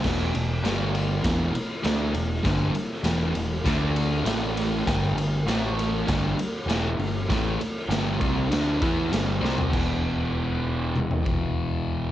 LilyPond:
<<
  \new Staff \with { instrumentName = "Distorted electric guitar" } { \clef bass \time 4/4 \key e \minor \tempo 4 = 99 <e, b, e>8 <e, b,>8 <g, d g>4 <e, b, e>8 r8 <d a d'>8 <e, b,>8 | <g, d g>8 r8 <e, b, e>8 <e, b,>8 <d a d'>4 <a, e a>4 | <g, d g>8 <g, d>8 <a, e a>4 <g, d g>8 r8 <e, b, e>8 <g, d>8 | <a, e a>8 r8 <g, d g>8 <c g c'>8 <d a d'>8 <e b e'>8 <g, d g>8 <c g c'>8 |
<e, b, e>1 | }
  \new Staff \with { instrumentName = "Picked electric bass" } { \clef bass \time 4/4 \key e \minor e,,8 e,,8 g,,4 e,,8 r8 d,8 e,,8 | g,,8 r8 e,,8 e,,8 d,4 a,,4 | g,,8 g,,8 a,,4 g,,8 r8 e,,8 g,,8 | a,,8 r8 g,,8 c,8 d,8 e,8 g,,8 c,8 |
e,,1 | }
  \new DrumStaff \with { instrumentName = "Drums" } \drummode { \time 4/4 <cymc bd sn>8 cymr8 <cymr sn>8 cymr8 <bd cymr sn>8 cymr8 <cymr sn>8 cymr8 | <bd cymr sn>8 cymr8 <cymr sn>8 cymr8 <bd cymr sn>8 cymr8 <cymr sn>8 cymr8 | <bd cymr sn>8 cymr8 <cymr sn>8 cymr8 <bd cymr sn>8 cymr8 <cymr sn>8 cymr8 | <bd cymr sn>8 cymr8 <cymr sn>8 <bd cymr>8 <cymr sn>8 <bd cymr>8 <cymr sn>8 sn16 tomfh16 |
<cymc bd>4 r4 toml16 tomfh16 bd8 r4 | }
>>